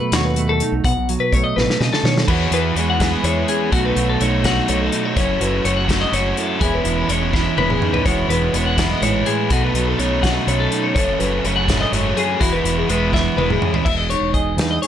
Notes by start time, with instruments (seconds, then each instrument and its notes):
Already playing: clean electric guitar B2 F#3 A3 B4
0.12 fingered electric bass D#2, clean electric guitar F#4 C#5, snare, closed hi-hat
0.25 clean electric guitar B4
0.36 clean electric guitar A3, closed hi-hat
0.49 clean electric guitar A4
0.60 clean electric guitar D#4, closed hi-hat
0.72 fingered electric bass B1
0.84 fingered electric bass B1, clean electric guitar B2 F#5, kick, closed hi-hat
0.97 fingered electric bass B1
1.09 clean electric guitar F#3, closed hi-hat
1.20 clean electric guitar B4
1.33 fingered electric bass B1, clean electric guitar A3 C#5, kick, closed hi-hat
1.44 clean electric guitar D#5
1.56 fingered electric bass A1, clean electric guitar B2 B4, snare
1.70 snare
1.80 fingered electric bass B2, clean electric guitar C#3 D#5, snare
1.93 clean electric guitar A4, snare
2.03 fingered electric bass B2, clean electric guitar D#3 C#5, snare
2.18 clean electric guitar A4, snare
2.28 fingered electric bass E2, clean electric guitar E2 F#4 C#5, overdriven electric guitar E3 B3 E4 G#4, kick, crash
2.51 fingered electric bass E2, clean electric guitar E3 B4, overdriven electric guitar E4 G#4, closed hi-hat
2.56 overdriven electric guitar B3
2.75 fingered electric bass E2, overdriven electric guitar E3 B3 E4 G#4, clean electric guitar G#3 C#5, closed hi-hat
2.90 clean electric guitar F#5
3.00 clean electric guitar E3, overdriven electric guitar E3 B3 E4 G#4, kick, snare, closed hi-hat
3.13 clean electric guitar D#5
3.24 fingered electric bass E2, overdriven electric guitar E3 B3 E4 G#4, clean electric guitar G#3 C#5, closed hi-hat
3.48 clean electric guitar C#4 G#4, closed hi-hat
3.72 fingered electric bass B1, overdriven electric guitar B2 F#3 A3 D#4 F#4, clean electric guitar B2 F#3 A3 D#4 F#4, kick, closed hi-hat
3.85 clean electric guitar B4
3.95 fingered electric bass B1, clean electric guitar F#3, overdriven electric guitar A3 D#4 F#4, closed hi-hat
4.09 clean electric guitar A4
4.20 fingered electric bass B1, overdriven electric guitar F#3 A3 D#4 F#4, clean electric guitar A3 C#5, closed hi-hat
4.44 overdriven electric guitar B2 F#3 A3 D#4 F#4, clean electric guitar F#3 F#5, kick, snare, closed hi-hat
4.67 fingered electric bass B1, overdriven electric guitar F#3 A3 D#4 F#4, clean electric guitar A3 C#5, closed hi-hat
4.81 clean electric guitar A4
4.92 clean electric guitar D#4, closed hi-hat
5.05 clean electric guitar C#5
5.15 fingered electric bass F#1, clean electric guitar F#2 F#3 E4 C#5, overdriven electric guitar F#3 A3 C#4 F#4, kick, closed hi-hat
5.40 fingered electric bass F#1, clean electric guitar F#3 B4, overdriven electric guitar A3 C#4 F#4, closed hi-hat
5.64 fingered electric bass F#1, overdriven electric guitar F#3 A3 C#4 F#4, clean electric guitar C#5, closed hi-hat
5.77 clean electric guitar F#5
5.88 clean electric guitar F#3, overdriven electric guitar F#3 A3 C#4 F#4, kick, snare, closed hi-hat
6.01 clean electric guitar D#5
6.12 fingered electric bass F#1, overdriven electric guitar F#3 A3 C#4 F#4, clean electric guitar C#5, closed hi-hat
6.37 clean electric guitar E4 A4, closed hi-hat
6.60 fingered electric bass E1, clean electric guitar E2 E3 B3 G#4, overdriven electric guitar E3 G#3 C#4 E4, kick, closed hi-hat
6.64 clean electric guitar E4
6.74 clean electric guitar B4
6.84 fingered electric bass E1, clean electric guitar E3, overdriven electric guitar G#3 C#4 E4, closed hi-hat
6.98 clean electric guitar A4
7.08 fingered electric bass E1, overdriven electric guitar E3 G#3 C#4, clean electric guitar G#3 C#5, closed hi-hat
7.12 overdriven electric guitar E4
7.22 clean electric guitar B3
7.33 clean electric guitar E3 E5, overdriven electric guitar E3 G#3 C#4 E4, kick, snare
7.57 fingered electric bass E1, overdriven electric guitar E3 G#3 C#4 E4, clean electric guitar B3 B4, high tom
7.70 clean electric guitar G#4, mid tom
7.81 clean electric guitar D#4, mid tom
7.94 clean electric guitar B4, floor tom
8.05 fingered electric bass E1, clean electric guitar E2 E3 G#3 C#4 F#4 C#5, overdriven electric guitar E3 G#3 B3 E4, kick, closed hi-hat
8.28 fingered electric bass E1, clean electric guitar E3 B4, overdriven electric guitar B3 E4, closed hi-hat
8.33 overdriven electric guitar G#3
8.53 fingered electric bass E1, overdriven electric guitar E3 G#3 B3 E4, clean electric guitar G#3 C#5, closed hi-hat
8.66 clean electric guitar F#5
8.77 clean electric guitar F#2, overdriven electric guitar E3 G#3 B3 E4, kick, snare, closed hi-hat
8.90 clean electric guitar D#5
9.01 fingered electric bass A1, clean electric guitar G#2 C#5, overdriven electric guitar E3 G#3 B3 E4, closed hi-hat
9.26 clean electric guitar A2 G#4, closed hi-hat
9.50 fingered electric bass B1, overdriven electric guitar B2 F#3 A3 D#4, clean electric guitar B2 F#4 A4, kick, closed hi-hat
9.64 clean electric guitar B4
9.73 fingered electric bass B1, clean electric guitar F#3, overdriven electric guitar A3 D#4, closed hi-hat
9.78 overdriven electric guitar F#3
9.88 clean electric guitar A4
9.98 fingered electric bass B1, overdriven electric guitar B2 F#3 A3 D#4, clean electric guitar C#4 C#5, closed hi-hat
10.22 overdriven electric guitar B2 F#3 A3 D#4, clean electric guitar F#3 F#5, kick, snare, closed hi-hat
10.46 fingered electric bass B1, overdriven electric guitar B2 F#3 A3 D#4, clean electric guitar C#4 C#5, closed hi-hat
10.60 clean electric guitar A4
10.72 clean electric guitar D#4, closed hi-hat
10.83 clean electric guitar C#5
10.95 fingered electric bass F#1, clean electric guitar F#2 A4 C#5, overdriven electric guitar F#2 C#3 F#3 A3 C#4, kick, closed hi-hat
11.19 fingered electric bass F#1, clean electric guitar F#3 B4, overdriven electric guitar A3 C#4, closed hi-hat
11.23 overdriven electric guitar F#3
11.44 fingered electric bass F#1, overdriven electric guitar C#3 F#3 A3 C#4, clean electric guitar C#5, closed hi-hat
11.56 clean electric guitar F#5
11.67 clean electric guitar A2, overdriven electric guitar F#3 A3 C#4, kick, snare, closed hi-hat
11.72 overdriven electric guitar F#2 C#3
11.81 clean electric guitar D#5
11.92 fingered electric bass F#1, clean electric guitar G#2 C#5, overdriven electric guitar C#3 F#3 A3, closed hi-hat
11.96 overdriven electric guitar C#4
12.16 clean electric guitar F#2 G#4, closed hi-hat
12.40 fingered electric bass E1, clean electric guitar E2 E4 F#4, overdriven electric guitar E3 G#3 B3 E4, kick, closed hi-hat
12.52 clean electric guitar F#4 B4
12.64 fingered electric bass E1, clean electric guitar E3, overdriven electric guitar G#3 B3 E4, closed hi-hat
12.78 clean electric guitar G#4
12.88 fingered electric bass E1, overdriven electric guitar E3 G#3 B3 E4, clean electric guitar G#3 B4, closed hi-hat
13.13 clean electric guitar E3 E5, overdriven electric guitar E3 G#3 B3 E4, kick, snare
13.36 fingered electric bass E1, overdriven electric guitar E3 G#3 B3 E4, clean electric guitar G#3 B4, high tom
13.50 clean electric guitar G#4, mid tom
13.62 clean electric guitar C#4, mid tom
13.74 clean electric guitar B4, floor tom
13.85 fingered electric bass E1, clean electric guitar E2 E5, kick, crash
13.98 clean electric guitar D#5
14.10 clean electric guitar D#4 C#5, closed hi-hat
14.21 fingered electric bass E1
14.34 clean electric guitar G#4 D#5, kick, closed hi-hat
14.57 fingered electric bass E2, clean electric guitar D#4 B4, snare, closed hi-hat
14.71 clean electric guitar D#5
14.82 clean electric guitar G#4 C#5, closed hi-hat